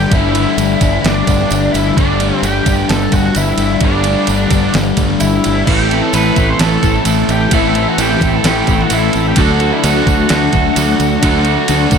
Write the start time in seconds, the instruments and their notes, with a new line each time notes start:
Already playing: distorted electric guitar G2 D3 G3, overdriven electric guitar G2 D3 G3, clean electric guitar G3 A3 D4, lead electric guitar G4
0.11 fingered electric bass G1, distorted electric guitar G2 D3, clean electric guitar G3, lead electric guitar E4, kick, ride, tambourine
0.15 distorted electric guitar G3
0.33 distorted electric guitar G3, clean electric guitar A3, ride
0.38 distorted electric guitar D3
0.57 fingered electric bass G1, distorted electric guitar G2 D3, clean electric guitar A3, ride, tambourine
0.62 distorted electric guitar G3
0.80 fingered electric bass G1, distorted electric guitar G2 D3 G3, clean electric guitar D4, kick, ride, tambourine
1.04 fingered electric bass G1, distorted electric guitar G2 D3 G3, clean electric guitar G3, lead electric guitar D4, snare, ride, tambourine
1.27 fingered electric bass G1, distorted electric guitar G2 D3 G3, clean electric guitar A3, kick, ride, tambourine
1.41 snare
1.50 fingered electric bass G1, distorted electric guitar G2 D3 G3, clean electric guitar G3, ride, tambourine
1.72 fingered electric bass G1, distorted electric guitar G3, clean electric guitar D4, lead electric guitar E4, ride, tambourine
1.77 distorted electric guitar D3
1.97 fingered electric bass G1, distorted electric guitar G2 D3 G3, clean electric guitar G3, lead electric guitar D4, kick, ride, tambourine
2.19 distorted electric guitar D3 G3, clean electric guitar A3, ride
2.42 fingered electric bass G1, distorted electric guitar G2 D3, clean electric guitar A3, lead electric guitar G4, ride, tambourine
2.47 distorted electric guitar G3
2.66 fingered electric bass G1, distorted electric guitar G2 D3 G3, clean electric guitar D4, kick, ride, tambourine
2.89 fingered electric bass G1, distorted electric guitar G2 D3 G3, clean electric guitar G3, lead electric guitar A4, snare, ride, tambourine
3.12 fingered electric bass G1, distorted electric guitar D3 G3, clean electric guitar A3, lead electric guitar F#4, kick, ride, tambourine
3.16 distorted electric guitar G2
3.25 snare
3.35 fingered electric bass G1, distorted electric guitar G2 D3 G3, clean electric guitar G3, lead electric guitar E4, ride, tambourine
3.58 fingered electric bass G1, distorted electric guitar D3 G3, clean electric guitar D4, ride, tambourine
3.81 fingered electric bass G1, distorted electric guitar G2 D3 G3, clean electric guitar G3, lead electric guitar D4, kick, ride
4.04 distorted electric guitar D3 G3, clean electric guitar A3, ride
4.27 fingered electric bass G1, distorted electric guitar G2 D3, clean electric guitar A3, ride, tambourine
4.32 distorted electric guitar G3
4.51 fingered electric bass G1, distorted electric guitar D3 G3, clean electric guitar D4, kick, ride, tambourine
4.55 distorted electric guitar G2
4.74 fingered electric bass G1, distorted electric guitar G2 D3, clean electric guitar G3, snare, ride, tambourine
4.78 distorted electric guitar G3
4.97 fingered electric bass G1, distorted electric guitar D3 G3, clean electric guitar A3, kick, ride, tambourine
5.01 distorted electric guitar G2
5.10 snare
5.20 fingered electric bass G1, distorted electric guitar G2 D3 G3, clean electric guitar G3, lead electric guitar E4, ride, tambourine
5.43 fingered electric bass G1, distorted electric guitar G3, clean electric guitar D4, ride, tambourine
5.47 distorted electric guitar D3
5.66 fingered electric bass A1, overdriven electric guitar A2 E3 A3 C4 E4 A4, distorted electric guitar A2 E3, clean electric guitar E3, lead electric guitar G4, kick, crash, tambourine
5.70 distorted electric guitar A3
5.90 distorted electric guitar A3, overdriven electric guitar A3 C4 E4 A4, clean electric guitar C4, ride
5.94 distorted electric guitar E3
6.02 lead electric guitar A4
6.13 fingered electric bass A1, distorted electric guitar A2 E3 A3, clean electric guitar E3, overdriven electric guitar A3 C4 E4 A4, lead electric guitar B4, ride, tambourine
6.36 fingered electric bass A1, distorted electric guitar E3 A3, overdriven electric guitar A3 C4 E4 A4, clean electric guitar C4, kick, ride, tambourine
6.40 distorted electric guitar A2
6.50 lead electric guitar C5
6.58 fingered electric bass A1, overdriven electric guitar A2 E3 A3 C4 E4 A4, distorted electric guitar A2 E3 A3, clean electric guitar E3, lead electric guitar A4, snare, ride, tambourine
6.82 fingered electric bass A1, distorted electric guitar A2 E3 A3, clean electric guitar E3, overdriven electric guitar A3 C4 E4 A4, kick, ride, tambourine
6.96 snare
7.05 fingered electric bass A1, distorted electric guitar A2 E3 A3, clean electric guitar E3, overdriven electric guitar A3 C4 E4 A4, ride, tambourine
7.27 fingered electric bass A1, distorted electric guitar A3, clean electric guitar C4, lead electric guitar G4, ride, tambourine
7.31 distorted electric guitar E3
7.50 fingered electric bass A1, distorted electric guitar A2 E3 A3, overdriven electric guitar A2 E3 A3 C4 E4 A4, clean electric guitar E3, lead electric guitar E4, kick, ride, tambourine
7.73 distorted electric guitar E3 A3, overdriven electric guitar A3 C4 E4 A4, clean electric guitar C4, ride
7.89 lead electric guitar F#4
7.97 fingered electric bass A1, distorted electric guitar A2 E3 A3, clean electric guitar E3, overdriven electric guitar A3 C4 E4 A4, lead electric guitar G4, ride, tambourine
8.21 fingered electric bass A1, distorted electric guitar A2 E3 A3, overdriven electric guitar A3 C4 E4 A4, clean electric guitar C4, kick, ride, tambourine
8.36 lead electric guitar A4
8.43 fingered electric bass A1, distorted electric guitar A2 E3 A3, overdriven electric guitar A2 E3 A3 C4 E4 A4, clean electric guitar E3, lead electric guitar G4, snare, ride, tambourine
8.67 fingered electric bass A1, distorted electric guitar A2 E3 A3, clean electric guitar E3, overdriven electric guitar A3 C4 E4 A4, kick, ride, tambourine
8.81 lead electric guitar F#4, snare
8.89 fingered electric bass A1, distorted electric guitar A2 E3 A3, clean electric guitar E3, overdriven electric guitar A3 C4, ride, tambourine
8.93 overdriven electric guitar E4 A4, lead electric guitar E4
9.12 fingered electric bass A1, distorted electric guitar E3 A3, clean electric guitar C4, ride, tambourine
9.28 lead electric guitar G4
9.35 fingered electric bass D2, distorted electric guitar D3 A3 D4, overdriven electric guitar D3 A3 D4, clean electric guitar F#3, lead electric guitar F#4, kick, ride, tambourine
9.39 overdriven electric guitar F#4 A4
9.59 clean electric guitar A3, distorted electric guitar A3 D4, overdriven electric guitar D4 F#4 A4, ride
9.73 lead electric guitar E4
9.83 fingered electric bass D2, distorted electric guitar D3 A3 D4, clean electric guitar F#3, overdriven electric guitar A3 D4 F#4 A4, lead electric guitar F#4, ride, tambourine
10.05 fingered electric bass D2, distorted electric guitar D3 A3 D4, clean electric guitar A3, overdriven electric guitar D4 F#4 A4, lead electric guitar F#4, kick, ride, tambourine
10.28 fingered electric bass D2, distorted electric guitar D3 A3 D4, overdriven electric guitar D3 A3 D4 F#4 A4, clean electric guitar F#3, snare, ride, tambourine
10.52 fingered electric bass D2, distorted electric guitar D3 A3 D4, clean electric guitar F#3, overdriven electric guitar D4 F#4 A4, kick, ride
10.75 fingered electric bass D2, distorted electric guitar D3 A3, clean electric guitar F#3, overdriven electric guitar A3 D4 F#4 A4, ride, tambourine
10.79 distorted electric guitar D4
10.98 fingered electric bass D2, clean electric guitar A3, distorted electric guitar A3 D4, ride, tambourine
11.22 fingered electric bass D2, overdriven electric guitar D3 A3 D4 F#4 A4, distorted electric guitar D3 A3 D4, clean electric guitar F#3, kick, ride, tambourine
11.45 clean electric guitar A3, distorted electric guitar D4, overdriven electric guitar D4 F#4 A4, ride, tambourine
11.49 distorted electric guitar A3
11.68 fingered electric bass D2, distorted electric guitar D3 A3, clean electric guitar F#3, overdriven electric guitar A3 D4 F#4 A4, ride, tambourine
11.73 distorted electric guitar D4
11.91 fingered electric bass D2, distorted electric guitar D3 A3 D4, clean electric guitar A3, overdriven electric guitar F#4 A4, kick, ride, tambourine
11.95 overdriven electric guitar D4